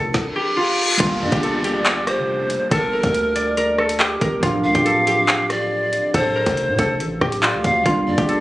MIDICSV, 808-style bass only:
0, 0, Header, 1, 2, 480
1, 0, Start_track
1, 0, Key_signature, -2, "minor"
1, 0, Tempo, 428571
1, 1120, Time_signature, 4, 2, 24, 8
1, 9411, End_track
2, 0, Start_track
2, 0, Title_t, "808-style bass"
2, 0, Program_c, 0, 38
2, 0, Note_on_c, 0, 29, 104
2, 151, Note_off_c, 0, 29, 0
2, 1120, Note_on_c, 0, 31, 108
2, 1359, Note_on_c, 0, 43, 99
2, 1376, Note_off_c, 0, 31, 0
2, 1474, Note_off_c, 0, 43, 0
2, 1480, Note_on_c, 0, 31, 107
2, 2438, Note_on_c, 0, 29, 99
2, 2455, Note_off_c, 0, 31, 0
2, 2895, Note_off_c, 0, 29, 0
2, 3039, Note_on_c, 0, 31, 109
2, 3385, Note_off_c, 0, 31, 0
2, 3400, Note_on_c, 0, 38, 98
2, 4675, Note_off_c, 0, 38, 0
2, 4720, Note_on_c, 0, 31, 102
2, 4950, Note_off_c, 0, 31, 0
2, 4959, Note_on_c, 0, 26, 108
2, 5198, Note_on_c, 0, 38, 98
2, 5215, Note_off_c, 0, 26, 0
2, 5313, Note_off_c, 0, 38, 0
2, 5320, Note_on_c, 0, 26, 100
2, 6715, Note_off_c, 0, 26, 0
2, 6879, Note_on_c, 0, 26, 114
2, 7225, Note_off_c, 0, 26, 0
2, 7240, Note_on_c, 0, 29, 105
2, 7480, Note_on_c, 0, 45, 98
2, 7497, Note_off_c, 0, 29, 0
2, 7594, Note_off_c, 0, 45, 0
2, 7601, Note_on_c, 0, 29, 105
2, 7840, Note_on_c, 0, 33, 98
2, 7857, Note_off_c, 0, 29, 0
2, 8068, Note_off_c, 0, 33, 0
2, 8079, Note_on_c, 0, 26, 109
2, 8440, Note_on_c, 0, 38, 95
2, 8457, Note_off_c, 0, 26, 0
2, 8554, Note_off_c, 0, 38, 0
2, 8560, Note_on_c, 0, 38, 103
2, 8791, Note_off_c, 0, 38, 0
2, 8799, Note_on_c, 0, 31, 108
2, 9040, Note_on_c, 0, 43, 101
2, 9057, Note_off_c, 0, 31, 0
2, 9154, Note_off_c, 0, 43, 0
2, 9161, Note_on_c, 0, 31, 105
2, 9411, Note_off_c, 0, 31, 0
2, 9411, End_track
0, 0, End_of_file